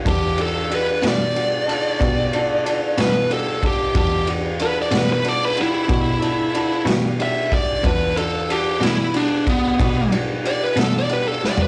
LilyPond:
<<
  \new Staff \with { instrumentName = "Lead electric guitar" } { \time 12/8 \key e \minor \tempo 4. = 62 g'8 a'8 b'8 d''2. b'8 a'8 g'8 | g'8 r8 b'16 d''16 b'16 b'16 d''16 b'16 e'2 r8 e''8 d''8 | b'8 a'8 g'8 e'8 d'8 b4 r8 d''16 b'16 a'16 d''16 b'16 a'16 d''16 b'16 | }
  \new Staff \with { instrumentName = "Upright piano" } { \time 12/8 \key e \minor <d' fis' a'>8 <d' fis' g'>8 <d' fis' g'>8 <d' fis' g'>8 <d' fis' g'>8 <d' fis' a'>8 <d' fis' g'>8 <d' fis' a'>8 <d' fis' a'>8 <d' fis' a'>8 <d' fis' g'>8 <d' fis' a'>8 | <d' fis' a'>8 <d' fis' g'>8 <d' fis' a'>8 <d' fis' g'>8 <d' fis' a'>8 <d' fis' g'>8 <d' fis' g'>8 <d' fis' a'>8 <d' fis' a'>8 <d' fis' g'>8 <d' fis' g'>8 <d' fis' g'>8 | <d' fis' a'>8 <d' fis' a'>8 <d' fis' a'>8 <d' fis' g'>8 <d' fis' g'>8 <d' fis' g'>8 <d' fis' g'>8 <d' fis' g'>8 <d' fis' g'>8 <d' fis' a'>8 <d' fis' g'>8 <d' fis' g'>8 | }
  \new Staff \with { instrumentName = "Clean electric guitar" } { \time 12/8 \key e \minor r4. <e g d' fis'>8 r2 r8 <e g d' fis'>8 r4 | r4. <e g d' fis'>8 r2 r8 <e g d' fis'>8 r4 | r4. <e g d' fis'>8 r2 r8 <e g d' fis'>8 r4 | }
  \new Staff \with { instrumentName = "Cello" } { \clef bass \time 12/8 \key e \minor e,4. b,4. b,4. b,4. | e,4. b,4. b,4. b,4. | e,4. b,4. b,4. b,4. | }
  \new DrumStaff \with { instrumentName = "Drums" } \drummode { \time 12/8 <bd cymr>8 cymr8 cymr8 <cymr sn>8 cymr8 cymr8 <bd cymr>8 cymr8 cymr8 <cymr sn>8 cymr8 <bd cymr>8 | <bd cymr>8 cymr8 cymr8 <cymr sn>8 cymr8 cymr8 <bd cymr>8 cymr8 cymr8 <cymr sn>8 cymr8 <bd cymr>8 | <bd cymr>8 cymr8 cymr8 <cymr sn>8 cymr8 <bd cymr>8 <bd cymr>8 cymr8 cymr8 <cymr sn>8 cymr8 sn16 tomfh16 | }
>>